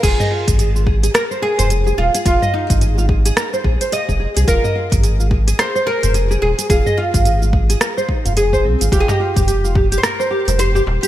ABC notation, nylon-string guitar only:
X:1
M:4/4
L:1/16
Q:"Swing 16ths" 1/4=108
K:Fm
V:1 name="Nylon-string guitar"
F e F A A F A A B c A c A A A A | F e F A A F A A B c A c A A A A | F e F A A F A A B c A c A A A A | F e F A A F A A B c E F A c C F |
F e F G G F G G B c G c G G G G |]